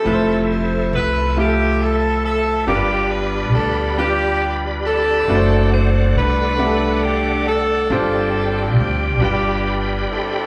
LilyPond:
<<
  \new Staff \with { instrumentName = "Tonewheel organ" } { \time 6/8 \key f \lydian \tempo 4. = 46 << { r2. | b''2. | r2. | r4. b''4. | } \\ { <a' e''>2. | <g' d''>2. | <a' d'' fis''>2. | <g' d'' g''>2. | } >> }
  \new Staff \with { instrumentName = "Saxophone section" } { \time 6/8 \key f \lydian << { a'8 c''8 b'8 g'8 a'8 a'8 | g'8 b'8 a'8 g'8 r8 a'8~ | a'8 c''8 b'4 g'8 a'8 | a'4 g'8 g'8 r8 a'8 | } \\ { <c' e'>4 r2 | <b d'>4. r4 <c' d'>8~ | <c' d'>4 d'4. r8 | <c' f'>4. <b d'>4 <c' e'>8 | } >> }
  \new Staff \with { instrumentName = "Grand piano" } { \time 6/8 \key f \lydian <f a e' b' c''>4 r8 <a e' f' g' a'>4 r8 | <g d' f' bes' b'>4 r8 <g d' f' b'>4 r8 | <a d' fis' b' c''>4 r8 <a d' g' a' fis''>4 r8 | <g d' f' c''>4 r8 <g d' f' b'>4 r8 | }
  \new Staff \with { instrumentName = "Grand piano" } { \clef bass \time 6/8 \key f \lydian r2. | g,4. r4. | r2. | g,4. g,4. | }
  \new Staff \with { instrumentName = "Upright bass" } { \clef bass \time 6/8 \key f \lydian f,,4 c,2 | g,,4 d,2 | fis,,4 c,2 | g,,4 d,8 g,,4 r8 | }
>>